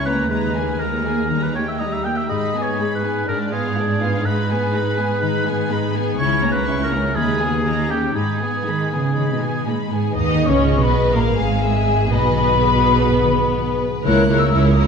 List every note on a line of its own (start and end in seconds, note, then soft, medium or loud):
0.00 0.26 C#2 medium
0.00 0.32 C#3 soft
0.00 2.32 A#3 soft
0.00 0.79 A#4 soft
0.05 0.30 A#3 soft
0.05 0.31 C#4 soft
0.05 0.32 E4 soft
0.05 0.29 B4 soft
0.05 0.30 A#5 soft
0.30 2.10 D#2 soft
0.30 1.29 D#3 soft
0.30 0.54 G#3 soft
0.30 0.54 D#4 soft
0.30 0.81 B4 soft
0.30 0.54 A#5 soft
0.55 0.81 A#3 soft
0.55 1.54 D#4 soft
0.55 0.81 G#4 soft
0.55 0.81 G#5 soft
0.80 1.06 G#3 soft
0.80 1.06 D#4 soft
0.80 1.44 A#4 soft
0.80 1.79 A#4 soft
0.80 1.06 A#5 soft
1.05 1.31 A#3 soft
1.05 1.32 G#4 soft
1.05 1.31 G#4 soft
1.05 1.31 G#5 soft
1.30 2.32 D#3 soft
1.30 1.54 G3 soft
1.30 1.54 D#4 soft
1.30 1.53 A#5 soft
1.43 1.54 B4 soft
1.55 1.80 A#3 soft
1.55 3.02 D#4 soft
1.55 1.81 G4 soft
1.55 1.67 C#5 soft
1.55 1.80 G5 soft
1.68 1.82 E5 soft
1.80 2.05 G3 soft
1.80 2.06 D#4 soft
1.80 2.32 A#4 soft
1.80 1.94 D#5 soft
1.80 2.05 A#5 soft
1.93 2.06 E5 soft
2.04 2.30 A#3 soft
2.04 2.30 G4 soft
2.04 2.32 G4 soft
2.04 2.18 G5 soft
2.04 2.30 G5 soft
2.17 2.29 E5 soft
2.29 3.27 G#2 soft
2.29 6.15 G#2 soft
2.29 2.53 G#3 soft
2.29 2.53 D#4 soft
2.29 2.63 D#5 soft
2.29 2.53 B5 soft
2.54 2.79 B3 soft
2.54 3.51 B3 soft
2.54 2.79 G#4 soft
2.54 2.80 G#5 soft
2.62 2.94 C#5 soft
2.78 3.04 G#3 soft
2.78 3.03 D#4 soft
2.78 4.72 G#4 soft
2.78 3.04 B5 soft
2.95 3.27 B4 soft
3.03 3.28 B3 soft
3.03 3.30 D#4 soft
3.03 3.28 G#4 soft
3.03 3.28 G#5 soft
3.27 4.23 G#2 soft
3.27 3.51 G#3 soft
3.27 3.50 D4 soft
3.27 3.39 A#4 medium
3.27 3.51 D5 soft
3.51 4.48 B3 soft
3.51 3.77 B3 soft
3.51 3.76 F4 soft
3.51 4.27 G#4 soft
3.51 3.77 F5 soft
3.76 4.01 G#3 soft
3.76 4.01 D4 soft
3.76 4.27 F4 soft
3.76 4.01 D5 soft
4.00 4.25 B3 soft
4.00 4.27 D4 soft
4.00 4.25 F4 soft
4.00 4.26 F5 soft
4.24 6.20 G#2 soft
4.24 4.48 G#3 soft
4.24 4.48 D#4 soft
4.24 5.95 B4 medium
4.24 4.48 B5 soft
4.49 5.45 B3 soft
4.49 4.74 B3 soft
4.49 4.74 G#4 soft
4.49 4.74 G#5 soft
4.73 4.98 G#3 soft
4.73 4.98 D#4 soft
4.73 5.69 G#4 soft
4.73 4.98 B5 soft
4.97 5.23 B3 soft
4.97 5.93 D#4 soft
4.97 5.22 G#4 soft
4.97 5.22 G#5 soft
5.22 6.20 D#3 soft
5.22 5.45 G#3 soft
5.22 5.45 D#4 soft
5.22 5.45 B5 soft
5.46 6.20 B3 soft
5.46 5.71 B3 soft
5.46 5.70 G#4 soft
5.46 5.71 G#5 soft
5.70 5.95 G#3 soft
5.70 5.94 D#4 soft
5.70 6.20 G#4 soft
5.70 5.95 B5 soft
5.94 6.18 B3 soft
5.94 6.20 D#4 soft
5.94 6.18 G#4 soft
5.94 6.19 G#5 soft
6.18 7.14 C#2 medium
6.18 7.18 C#3 soft
6.18 6.41 C#4 soft
6.18 6.41 E4 medium
6.18 6.48 C#5 medium
6.18 6.41 C#6 soft
6.42 6.66 A#3 soft
6.42 7.18 A#3 soft
6.42 6.67 C#4 soft
6.42 6.67 A#5 soft
6.52 6.83 B4 medium
6.66 6.91 C#4 soft
6.66 6.92 E4 soft
6.66 7.18 A#4 soft
6.66 6.91 C#6 soft
6.84 7.17 A#4 medium
6.91 7.16 A#3 soft
6.91 7.16 C#4 soft
6.91 7.18 E4 soft
6.91 7.16 A#5 soft
7.16 8.15 D#2 soft
7.16 7.64 D#3 soft
7.16 7.39 G#3 soft
7.16 7.39 D#4 soft
7.16 7.92 G#4 medium
7.16 7.39 B5 soft
7.40 7.65 B3 soft
7.40 7.89 D#4 soft
7.40 7.65 G#4 soft
7.40 7.67 G#4 soft
7.40 7.65 G#5 soft
7.65 8.17 D#3 soft
7.65 7.88 A#3 soft
7.65 7.88 D#4 soft
7.65 7.88 A#5 soft
7.90 8.15 C#4 soft
7.90 8.90 D#4 soft
7.90 8.15 G4 medium
7.90 8.17 G4 soft
7.90 8.16 G4 soft
7.90 8.15 G5 soft
8.15 8.60 G#2 soft
8.15 10.14 G#2 soft
8.15 8.38 G#3 soft
8.15 8.38 D#4 soft
8.15 9.63 G#4 soft
8.15 8.39 B5 soft
8.39 8.66 B3 soft
8.39 9.39 B3 soft
8.39 8.65 G#4 soft
8.39 8.67 G#5 soft
8.65 8.96 D#3 soft
8.65 8.91 G#3 soft
8.65 8.91 D#4 soft
8.65 9.64 G#4 soft
8.65 8.91 B5 soft
8.91 9.16 B3 soft
8.91 9.89 D#4 soft
8.91 9.16 G#4 soft
8.91 9.16 G#5 soft
8.99 9.32 C#3 soft
9.16 10.18 D#3 soft
9.16 9.39 G#3 soft
9.16 9.39 D#4 soft
9.16 9.39 B5 soft
9.32 9.66 B2 soft
9.40 10.48 B3 soft
9.40 9.66 B3 soft
9.40 9.66 G#4 soft
9.40 9.66 G#5 soft
9.65 9.73 A#2 soft
9.65 9.91 G#3 soft
9.65 9.91 D#4 soft
9.65 10.64 G#4 soft
9.65 9.91 B5 soft
9.90 10.16 G#2 soft
9.90 10.16 B3 soft
9.90 11.16 D#4 soft
9.90 10.16 G#4 soft
9.90 10.16 G#5 soft
10.15 10.47 D#2 medium
10.15 11.13 G#2 soft
10.15 10.46 D#3 medium
10.15 10.47 D#4 medium
10.15 10.62 B4 soft
10.15 10.46 D#5 medium
10.15 10.46 D#6 medium
10.33 11.16 D#3 soft
10.47 10.82 C#2 medium
10.47 10.81 C#3 medium
10.47 11.46 B3 soft
10.47 10.81 C#4 medium
10.47 10.81 C#5 medium
10.47 10.81 C#6 medium
10.65 10.97 G#4 soft
10.65 11.14 D#5 medium
10.81 11.14 B1 soft
10.81 11.14 B2 soft
10.81 11.14 B3 soft
10.81 11.13 B4 medium
10.81 11.78 B4 soft
10.81 11.14 B5 medium
10.98 11.62 G#4 soft
11.14 11.39 A#1 medium
11.14 12.11 G#2 soft
11.14 11.38 A#2 soft
11.14 11.39 A#3 medium
11.14 11.38 A#4 medium
11.14 11.64 F5 medium
11.14 11.20 A#5 medium
11.30 14.06 G#3 soft
11.38 12.11 G#1 medium
11.38 12.10 G#2 medium
11.38 12.12 G#3 medium
11.38 12.11 G#4 medium
11.38 12.10 G#5 medium
11.47 12.43 B3 soft
11.63 11.95 G#4 soft
11.63 12.12 E5 medium
11.79 12.75 B4 soft
11.96 12.59 G#4 soft
12.12 13.80 B1 medium
12.12 13.07 G#2 soft
12.12 13.80 B2 medium
12.12 13.77 B3 medium
12.12 13.80 B4 medium
12.12 12.60 D#5 medium
12.12 13.80 B5 medium
12.28 13.23 D#3 soft
12.44 13.38 B3 soft
12.60 12.91 G#4 soft
12.60 14.01 B4 medium
12.76 13.70 B4 soft
12.92 13.54 G#4 soft
13.08 14.06 G#2 soft
13.24 14.06 D#3 soft
13.40 14.06 B3 soft
13.55 13.86 G#4 soft
13.71 14.06 B4 soft
13.88 14.06 G#4 soft
14.03 14.47 C#2 medium
14.03 14.87 C#3 soft
14.03 14.28 A#3 soft
14.03 14.27 E4 medium
14.03 14.87 A#4 medium
14.03 14.29 A#4 medium
14.03 14.28 C#5 medium
14.03 14.34 F#6 medium
14.20 14.87 C#4 soft
14.28 14.51 A#3 medium
14.28 14.51 E4 soft
14.28 14.52 A#4 soft
14.28 14.52 C#5 soft
14.36 14.87 A#3 soft
14.36 14.69 E6 medium
14.52 14.87 C#2 medium
14.52 14.75 A#3 soft
14.52 14.75 E4 soft
14.52 14.83 A#4 soft
14.52 14.77 A#4 soft
14.52 14.77 C#5 soft
14.68 14.87 E4 soft
14.68 14.87 D#6 medium
14.76 14.87 A#3 soft
14.76 14.87 E4 soft
14.76 14.87 A#4 soft
14.76 14.87 C#5 soft